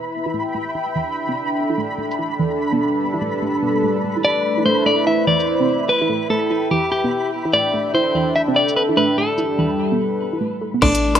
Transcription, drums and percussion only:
2.11 cabasa
5.40 cabasa
8.69 cabasa
9.38 cabasa
10.82 kick, crash, percussion blips
10.95 closed hi-hat
11.15 closed hi-hat, percussion blips

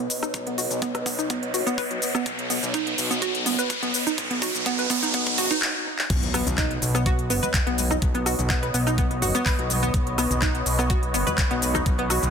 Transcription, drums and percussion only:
0.10 open hi-hat, cabasa
0.23 cross-stick, closed hi-hat, cabasa
0.34 kick, closed hi-hat, cabasa
0.47 closed hi-hat
0.58 open hi-hat, cabasa
0.71 closed hi-hat, cabasa
0.82 kick, closed hi-hat, cabasa
0.95 cross-stick, closed hi-hat
1.06 kick, open hi-hat, cabasa
1.19 closed hi-hat, cabasa
1.30 kick, closed hi-hat, cabasa
1.43 closed hi-hat
1.54 open hi-hat, cabasa
1.67 closed hi-hat, cabasa
1.78 kick, open hi-hat, cabasa
1.91 closed hi-hat
2.02 open hi-hat, cabasa
2.15 cross-stick, closed hi-hat, cabasa
2.26 kick, closed hi-hat, cabasa
2.39 closed hi-hat
2.50 open hi-hat, cabasa
2.63 closed hi-hat, cabasa
2.74 kick, closed hi-hat, cabasa
2.87 closed hi-hat
2.98 open hi-hat, cabasa
3.11 closed hi-hat, cabasa
3.22 kick, closed hi-hat, cabasa
3.35 closed hi-hat
3.46 open hi-hat, cabasa
3.59 closed hi-hat, cabasa
3.70 kick, closed hi-hat, cabasa
3.83 closed hi-hat
3.94 open hi-hat, cabasa
4.07 closed hi-hat, cabasa
4.18 kick, closed hi-hat, cabasa
4.31 closed hi-hat
4.42 kick, open hi-hat, cabasa
4.55 closed hi-hat, cabasa
4.66 kick, closed hi-hat, cabasa
4.79 closed hi-hat
4.90 kick, open hi-hat, cabasa
5.03 closed hi-hat, cabasa
5.14 kick, closed hi-hat, cabasa
5.27 kick, closed hi-hat
5.38 kick, open hi-hat, cabasa
5.51 kick, closed hi-hat, cabasa
5.62 clap
5.99 clap
6.10 kick, closed hi-hat, crash, cabasa
6.23 closed hi-hat, high bongo
6.34 cross-stick, open hi-hat, cabasa
6.46 closed hi-hat, low conga, cabasa
6.58 kick, clap, closed hi-hat, cabasa
6.71 closed hi-hat
6.82 open hi-hat, cabasa
6.95 cross-stick, closed hi-hat, cabasa
7.06 kick, closed hi-hat, cabasa
7.19 closed hi-hat
7.30 open hi-hat, cabasa
7.42 closed hi-hat, high conga, low conga, cabasa
7.54 kick, clap, closed hi-hat, cabasa
7.67 closed hi-hat
7.78 open hi-hat, high conga, cabasa
7.91 cross-stick, closed hi-hat, high bongo, low conga, cabasa
8.02 kick, closed hi-hat, cabasa
8.14 closed hi-hat, high bongo
8.26 cross-stick, open hi-hat, cabasa
8.39 closed hi-hat, low conga, cabasa
8.50 kick, clap, closed hi-hat, cabasa
8.63 closed hi-hat
8.74 open hi-hat, cabasa
8.87 cross-stick, closed hi-hat, cabasa
8.98 kick, closed hi-hat, cabasa
9.11 closed hi-hat, high bongo
9.22 open hi-hat, low conga, cabasa
9.35 closed hi-hat, high conga, cabasa
9.46 kick, clap, open hi-hat, cabasa
9.59 closed hi-hat, high bongo
9.70 open hi-hat, high conga, cabasa
9.83 closed hi-hat, low conga, cabasa
9.94 kick, closed hi-hat, cabasa
10.07 closed hi-hat, high bongo
10.18 cross-stick, open hi-hat, cabasa
10.31 closed hi-hat, low conga, cabasa
10.42 kick, clap, closed hi-hat, cabasa
10.55 closed hi-hat
10.66 open hi-hat, cabasa
10.79 cross-stick, closed hi-hat, cabasa
10.90 kick, closed hi-hat, cabasa
11.03 closed hi-hat
11.14 open hi-hat, cabasa
11.27 closed hi-hat, high conga, low conga, cabasa
11.38 kick, clap, closed hi-hat, cabasa
11.51 closed hi-hat
11.62 open hi-hat, high conga, cabasa
11.74 cross-stick, closed hi-hat, high bongo, low conga, cabasa
11.86 kick, closed hi-hat, cabasa
11.98 closed hi-hat, high bongo
12.10 cross-stick, open hi-hat, cabasa
12.23 closed hi-hat, low conga, cabasa

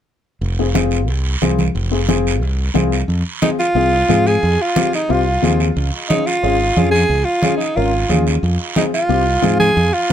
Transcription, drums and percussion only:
0.42 high conga, long guiro
0.75 high conga, short guiro
0.91 short guiro
1.08 high conga, long guiro
1.42 high conga, short guiro
1.59 high conga, short guiro
1.75 high conga, long guiro
2.09 high conga, short guiro
2.27 short guiro
2.42 high conga, long guiro
2.75 high conga, short guiro
2.92 short guiro
3.09 high conga, long guiro
3.42 high conga, short guiro
3.60 short guiro
3.76 high conga, long guiro
4.10 high conga, short guiro
4.27 short guiro
4.43 high conga, long guiro
4.76 high conga, short guiro
4.93 short guiro
5.10 high conga, long guiro
5.43 high conga, short guiro
5.60 short guiro
5.76 high conga, long guiro
6.10 high conga, short guiro
6.27 short guiro
6.44 high conga, long guiro
6.77 high conga, short guiro
6.95 short guiro
7.10 high conga, long guiro
7.43 high conga, short guiro
7.61 short guiro
7.76 high conga, long guiro
8.10 high conga, short guiro
8.27 short guiro
8.43 high conga, long guiro
8.76 high conga, short guiro
8.94 short guiro
9.10 high conga, long guiro
9.43 high conga, short guiro
9.60 high conga, short guiro
9.77 high conga, long guiro

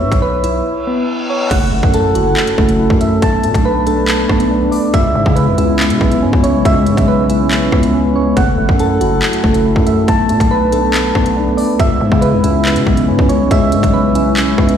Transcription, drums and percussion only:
0.12 kick, closed hi-hat
0.44 closed hi-hat
1.51 kick, closed hi-hat, crash
1.83 kick
1.94 closed hi-hat
2.15 closed hi-hat
2.37 clap, closed hi-hat
2.47 closed hi-hat
2.58 kick
2.69 closed hi-hat
2.90 kick
3.01 closed hi-hat
3.22 kick, closed hi-hat
3.43 closed hi-hat
3.54 kick, closed hi-hat
3.87 closed hi-hat
4.08 clap, closed hi-hat
4.29 kick, cross-stick
4.40 closed hi-hat
4.72 open hi-hat
4.94 kick, closed hi-hat
5.26 kick
5.36 closed hi-hat
5.58 closed hi-hat
5.79 clap, closed hi-hat
5.90 closed hi-hat
6.01 kick
6.11 closed hi-hat
6.33 kick
6.44 closed hi-hat
6.65 kick, closed hi-hat
6.86 closed hi-hat
6.97 kick, closed hi-hat
7.30 closed hi-hat
7.51 clap, closed hi-hat
7.72 kick, cross-stick
7.83 closed hi-hat
8.37 kick, closed hi-hat
8.69 kick
8.79 closed hi-hat
9.01 closed hi-hat
9.22 clap, closed hi-hat
9.33 closed hi-hat
9.44 kick
9.54 closed hi-hat
9.76 kick
9.87 closed hi-hat
10.08 kick, closed hi-hat
10.29 closed hi-hat
10.40 kick, closed hi-hat
10.72 closed hi-hat
10.94 clap, closed hi-hat
11.15 kick, cross-stick
11.26 closed hi-hat
11.58 open hi-hat
11.80 kick, closed hi-hat
12.12 kick
12.22 closed hi-hat
12.44 closed hi-hat
12.65 clap, closed hi-hat
12.76 closed hi-hat
12.87 kick
12.97 closed hi-hat
13.19 kick
13.29 closed hi-hat
13.51 kick, closed hi-hat
13.72 closed hi-hat
13.83 kick, closed hi-hat
14.15 closed hi-hat
14.37 clap, closed hi-hat
14.58 kick, cross-stick
14.69 closed hi-hat

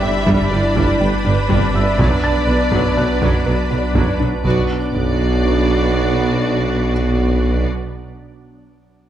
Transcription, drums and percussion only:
0.27 taiko
0.77 taiko
1.50 taiko
1.99 taiko
2.72 taiko
3.22 taiko
3.95 taiko
4.45 taiko
4.94 taiko

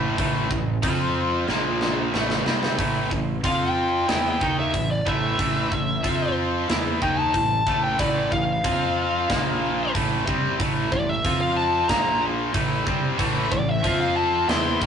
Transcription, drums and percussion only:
0.18 kick, open hi-hat
0.51 kick
0.83 kick, open hi-hat
1.48 snare
1.81 snare
2.14 snare
2.30 snare
2.46 snare
2.63 snare
2.79 kick, open hi-hat
3.11 kick
3.44 kick, open hi-hat
4.09 snare, open hi-hat
4.41 kick
4.74 kick, open hi-hat
5.07 kick
5.39 kick, open hi-hat
5.72 kick
6.04 kick, open hi-hat
6.69 snare, open hi-hat
7.02 kick
7.34 kick, open hi-hat
7.67 kick
7.99 kick, open hi-hat
8.32 kick
8.64 kick, open hi-hat
9.30 kick, snare, open hi-hat
9.95 kick, open hi-hat
10.27 kick
10.60 kick, open hi-hat
10.92 kick
11.25 kick, open hi-hat
11.89 kick, snare, open hi-hat
12.54 kick, open hi-hat
12.87 kick
13.19 kick, open hi-hat
13.52 kick
13.84 kick, open hi-hat
14.49 snare, open hi-hat
14.82 kick

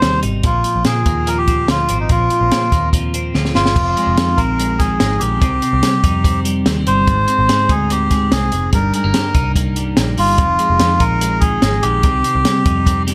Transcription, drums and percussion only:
0.02 snare, closed hi-hat
0.23 closed hi-hat
0.43 kick, closed hi-hat
0.64 closed hi-hat
0.85 snare, closed hi-hat
1.06 kick, closed hi-hat
1.27 closed hi-hat
1.48 kick, closed hi-hat
1.68 snare, closed hi-hat
1.89 closed hi-hat
2.09 kick, closed hi-hat
2.30 closed hi-hat
2.52 snare, closed hi-hat
2.72 kick, closed hi-hat
2.93 kick, closed hi-hat
3.14 closed hi-hat
3.35 snare
3.45 snare
3.55 snare
3.66 snare
3.76 kick, crash
3.97 closed hi-hat
4.18 snare, closed hi-hat
4.38 kick, closed hi-hat
4.60 closed hi-hat
4.80 kick, snare, closed hi-hat
5.00 snare, closed hi-hat
5.21 closed hi-hat
5.42 kick, closed hi-hat
5.62 closed hi-hat
5.83 snare, closed hi-hat
6.04 kick, closed hi-hat
6.24 kick, closed hi-hat
6.45 closed hi-hat
6.66 snare, closed hi-hat
6.87 closed hi-hat
7.07 kick, closed hi-hat
7.28 closed hi-hat
7.49 snare, closed hi-hat
7.69 kick, closed hi-hat
7.90 closed hi-hat
8.11 kick, snare, closed hi-hat
8.32 snare, closed hi-hat
8.52 closed hi-hat
8.73 kick, closed hi-hat
8.94 closed hi-hat
9.14 snare, closed hi-hat
9.35 kick, closed hi-hat
9.56 kick, closed hi-hat
9.76 closed hi-hat
9.97 snare, closed hi-hat
10.18 open hi-hat
10.38 kick, closed hi-hat
10.59 closed hi-hat
10.80 snare, closed hi-hat
11.00 kick, closed hi-hat
11.21 closed hi-hat
11.42 kick, closed hi-hat
11.62 snare, closed hi-hat
11.83 closed hi-hat
12.03 kick, closed hi-hat
12.24 closed hi-hat
12.45 snare, closed hi-hat
12.66 kick, closed hi-hat
12.86 kick, closed hi-hat
13.08 snare, closed hi-hat

